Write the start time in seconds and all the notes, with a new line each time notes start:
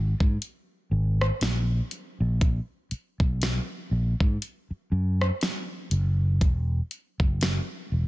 Already playing: G#1
0.20 G#2, kick
0.42 closed hi-hat
0.91 G#1
1.21 cross-stick
1.41 A#1, snare, closed hi-hat
1.91 closed hi-hat
2.20 A#1
2.41 kick, closed hi-hat
2.91 muted fingered electric bass stroke, closed hi-hat
3.20 B1, kick
3.42 snare, closed hi-hat
3.91 A#1
4.20 G#2, kick
4.42 closed hi-hat
4.71 muted fingered electric bass stroke
4.92 F#2
5.21 cross-stick
5.41 snare, closed hi-hat
5.91 F#1, closed hi-hat
6.41 E1, kick, closed hi-hat
6.91 closed hi-hat
7.20 F#1, kick
7.41 snare, closed hi-hat
7.92 E1